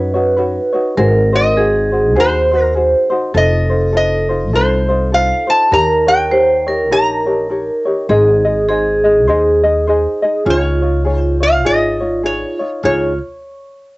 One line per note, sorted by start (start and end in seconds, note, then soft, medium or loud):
0.00 0.56 F#2 loud
0.00 0.14 D#4 medium
0.00 0.14 F#4 medium
0.00 0.14 B4 medium
0.00 1.01 B4 loud
0.00 0.13 C#5 loud
0.14 0.36 D#4 medium
0.14 0.37 F#4 medium
0.14 0.37 C#5 medium
0.36 0.73 D#4 medium
0.36 0.73 F#4 medium
0.36 0.73 B4 medium
0.36 0.71 C#5 medium
0.73 0.96 D#4 medium
0.73 0.97 F#4 soft
0.73 0.97 C#5 medium
0.97 2.16 G#1 loud
0.97 1.33 D#4 medium
0.97 1.33 F#4 medium
0.97 1.33 G#4 medium
0.97 1.59 A#4 medium
0.97 1.32 C5 loud
1.33 1.56 D#4 soft
1.33 1.57 F#4 soft
1.33 1.57 C5 medium
1.33 2.20 D#5 loud
1.57 1.92 D#4 medium
1.57 1.91 F#4 medium
1.57 1.92 G#4 medium
1.57 2.18 G#4 medium
1.57 1.91 C5 medium
1.92 2.15 D#4 soft
1.92 2.15 F#4 soft
1.92 2.16 C5 soft
2.15 2.93 D#2 loud
2.15 2.52 D#4 medium
2.15 2.51 F#4 medium
2.15 2.51 G#4 medium
2.15 3.07 C5 medium
2.15 2.50 C5 medium
2.20 2.61 C5 medium
2.51 2.74 D#4 soft
2.51 2.75 F#4 soft
2.51 2.75 C5 medium
2.61 2.73 A#4 medium
2.75 3.11 D#4 medium
2.75 3.10 F#4 medium
2.75 3.11 G#4 medium
2.75 3.09 C5 medium
3.10 3.33 D#4 medium
3.10 3.35 F#4 medium
3.10 3.34 C5 medium
3.34 4.53 F1 loud
3.34 3.70 D#4 medium
3.34 3.70 F4 medium
3.34 3.70 A4 medium
3.34 5.67 A4 medium
3.34 3.68 C5 medium
3.34 3.96 D#5 medium
3.70 3.92 D#4 soft
3.70 3.93 F4 soft
3.70 3.94 C5 medium
3.92 4.29 D#4 medium
3.92 4.29 F4 medium
3.92 4.29 A4 medium
3.92 4.28 C5 medium
3.97 4.56 D#5 medium
4.29 4.52 D#4 soft
4.29 4.53 F4 soft
4.29 4.53 C5 soft
4.53 5.30 C2 medium
4.53 4.89 D#4 medium
4.53 4.88 F4 medium
4.53 4.88 A4 medium
4.53 4.87 C5 medium
4.53 5.15 C5 medium
4.89 5.12 D#4 soft
4.89 5.12 F4 medium
4.89 5.12 C5 medium
5.12 5.48 D#4 medium
5.12 5.47 F4 medium
5.12 5.48 A4 medium
5.12 5.46 C5 medium
5.12 5.50 F5 medium
5.47 5.71 D#4 soft
5.47 5.72 F4 soft
5.47 5.71 C5 medium
5.47 5.73 A5 medium
5.71 6.91 D#2 loud
5.71 6.07 D#4 medium
5.71 6.06 G4 medium
5.71 6.07 A#4 medium
5.71 6.33 A#4 loud
5.71 6.06 C#5 medium
5.71 6.09 A#5 loud
6.07 6.31 D#4 soft
6.07 6.30 G4 soft
6.07 6.31 C#5 medium
6.07 6.93 G5 loud
6.31 6.67 D#4 medium
6.31 6.67 G4 medium
6.31 6.66 A#4 medium
6.31 6.64 C5 loud
6.31 6.65 C#5 medium
6.67 6.90 D#4 soft
6.67 6.91 G4 soft
6.67 8.06 A#4 medium
6.67 6.90 C#5 medium
6.91 7.68 A#1 loud
6.91 7.26 D#4 medium
6.91 7.26 G4 medium
6.91 7.26 A#4 medium
6.91 7.25 C#5 medium
6.91 7.82 A#5 medium
7.26 7.49 D#4 soft
7.26 7.49 G4 soft
7.26 7.50 C#5 medium
7.49 7.85 D#4 medium
7.49 7.85 G4 medium
7.49 7.85 A#4 medium
7.49 7.84 C#5 medium
7.85 8.08 D#4 medium
7.85 8.09 G4 medium
7.85 8.09 C#5 medium
8.09 9.28 G#1 loud
8.09 8.45 D#4 medium
8.09 8.65 G#4 medium
8.09 8.45 G#4 medium
8.09 8.44 C5 medium
8.09 8.43 D#5 medium
8.45 8.68 D#4 soft
8.45 8.69 G#4 medium
8.45 8.68 D#5 medium
8.68 9.04 D#4 medium
8.68 10.52 G#4 medium
8.68 9.04 G#4 medium
8.68 9.04 C5 medium
8.68 9.03 D#5 medium
9.04 9.27 D#4 soft
9.04 9.28 G#4 medium
9.04 9.28 D#5 medium
9.27 10.05 D#2 medium
9.27 9.63 D#4 medium
9.27 9.63 G#4 medium
9.27 9.63 C5 medium
9.27 9.62 D#5 medium
9.63 9.86 D#4 medium
9.63 9.87 G#4 medium
9.63 9.87 D#5 medium
9.87 10.23 D#4 medium
9.87 10.22 G#4 medium
9.87 10.23 C5 medium
9.87 10.21 D#5 medium
10.22 10.45 D#4 medium
10.22 10.44 G#4 medium
10.22 10.46 D#5 medium
10.45 11.65 C#2 loud
10.45 10.82 D#4 medium
10.45 12.56 F4 medium
10.45 10.82 F4 medium
10.45 10.81 G#4 medium
10.45 10.81 C#5 medium
10.50 11.15 C#5 medium
10.82 11.04 D#4 soft
10.82 11.05 F4 soft
10.82 11.05 C#5 medium
11.05 11.41 D#4 medium
11.05 11.40 F4 medium
11.05 11.41 G#4 medium
11.05 11.39 C#5 medium
11.15 11.46 C5 medium
11.40 11.64 D#4 soft
11.40 11.65 F4 soft
11.40 11.65 C#5 soft
11.40 11.67 F5 loud
11.65 12.42 G#1 loud
11.65 12.01 D#4 medium
11.65 12.00 F4 medium
11.65 12.00 G#4 medium
11.65 11.99 C#5 medium
11.65 12.25 D#5 medium
12.00 12.23 D#4 soft
12.00 12.24 F4 soft
12.00 12.24 C#5 soft
12.23 12.60 D#4 medium
12.23 12.59 F4 medium
12.23 12.59 G#4 medium
12.23 12.58 C#5 medium
12.23 12.69 C#5 medium
12.59 12.83 D#4 soft
12.59 12.84 F4 soft
12.59 12.83 C#5 medium
12.84 13.17 C#2 medium
12.84 13.13 D#4 medium
12.84 13.17 F4 medium
12.84 13.13 F4 medium
12.84 13.12 G#4 medium
12.84 13.18 C#5 medium
12.84 13.13 C#5 medium